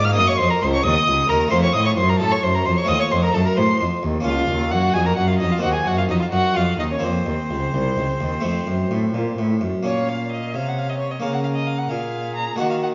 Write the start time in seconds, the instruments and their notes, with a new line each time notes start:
Already playing: harpsichord G#2 A#3 F4, cello G#2
0.04 violin F5 F6
0.14 harpsichord A#3 D#4, violin D#5 D#6
0.18 cello F#2, harpsichord F#2
0.27 violin C#5 C#6
0.37 harpsichord F2, cello F2, violin C5 C6
0.50 violin A#4 A#5
0.61 harpsichord C#2, cello C#2, violin C5 C6
0.74 violin C#5 C#6
0.83 harpsichord D#2, cello D#2, violin D#5 D#6
1.08 harpsichord C#2, cello C#2
1.29 harpsichord D#2, cello D#2, violin A#4 A#5
1.48 harpsichord A3 C4 F4, violin C6
1.53 harpsichord F2, cello F2, violin C5
1.63 violin C#5 C#6
1.73 harpsichord A2, cello A2, violin D#5 D#6
1.86 violin C#5 C#6
1.97 harpsichord F#2, cello F#2, violin C5 C6
2.09 violin A#4 A#5
2.19 harpsichord A2, cello A2, violin A4 A5
2.32 violin C#5 C#6
2.43 harpsichord F#2, cello F#2, violin C5 C6
2.55 violin A#4 A#5
2.65 harpsichord F2, cello F2, violin C5 C6
2.77 violin C#5 C#6
2.85 harpsichord A3 C4 F4, violin D#5 D#6
2.89 harpsichord D#2, cello D#2
3.00 violin C#5 C#6
3.11 harpsichord F2, cello F2, violin C5 C6
3.22 violin A#4 A#5
3.33 cello F#2, harpsichord F#2, violin A4 A5
3.44 violin A#4 A#5
3.57 harpsichord A2, cello A2, violin C5 C6
3.81 harpsichord F2, cello F2
4.03 harpsichord D#2, cello D#2
4.20 harpsichord A#3 C#4 F4
4.25 harpsichord C#2, cello C#2, violin F4 F5
4.48 harpsichord D#2, cello D#2
4.71 harpsichord F#2, cello F#2, violin F#4 F#5
4.93 harpsichord F2, cello F2, violin G#4 G#5
5.06 violin A#4 A#5
5.16 harpsichord F#2, cello F#2, violin F#4 F#5
5.27 violin F4 F5
5.39 harpsichord F2, cello F2, violin D#4 D#5
5.51 violin F4 F5
5.58 harpsichord A#3 C4 D#4
5.62 harpsichord D#2, cello D#2, violin F#4 F#5
5.73 violin G#4 G#5
5.86 harpsichord F#2, cello F#2, violin F#4 F#5
5.98 violin F4 F5
6.09 harpsichord F2, cello F2, violin D#4 D#5
6.19 violin F4 F5
6.31 harpsichord F#2, cello F#2, violin F#4 F#5
6.54 cello F2, harpsichord F2, violin F4 F5
6.78 cello D#2, harpsichord D#2, violin D#4 D#5
6.91 violin C#4 C#5
6.99 cello F2, harpsichord A#3 C4, violin C4
7.03 harpsichord F2, violin C5
7.26 harpsichord D#2, cello D#2
7.51 harpsichord C#2, cello C#2
7.74 harpsichord C2, cello C2
7.98 cello C#2, harpsichord C#2
8.20 harpsichord D#2, cello D#2
8.40 cello F2, harpsichord A3 C4
8.45 harpsichord F2
8.67 cello F#2, harpsichord F#2
8.91 cello A2, harpsichord A2
9.13 cello A#2, harpsichord A#2
9.38 harpsichord A2, cello A2
9.61 harpsichord F#2, cello F#2
9.83 cello A#2, harpsichord A#2 A#3 C#4, violin C#5 F5
10.08 violin F5
10.32 violin D#5
10.54 harpsichord C3, cello C3, violin C#5 F5
10.68 violin F#5
10.78 violin F5
10.89 violin D#5
10.99 violin C#5
11.11 violin D#5
11.20 harpsichord C#3 A#3 C#4, violin A#4 F5
11.24 cello C#3
11.34 violin F#5
11.44 violin F5
11.55 violin D#5
11.67 violin F5
11.78 violin F#5
11.89 cello A#2, harpsichord A#2, violin G#4 F5
12.35 violin A#5
12.56 cello D#3, harpsichord D#3 A#3 F#4, violin F#4 F#5
12.71 violin F5
12.83 violin F#5